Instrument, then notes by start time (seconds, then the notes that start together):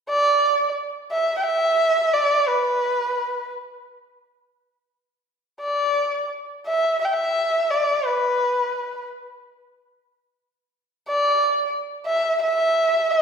erhu
0.08 D5
1.11 E5
1.38 G5
1.44 E5
2.13 D5
2.48 B4
5.60 D5
6.66 E5
7.00 E5
7.05 G5
7.13 E5
7.70 D5
8.05 B4
11.08 D5
12.06 E5
12.42 E5
13.10 D5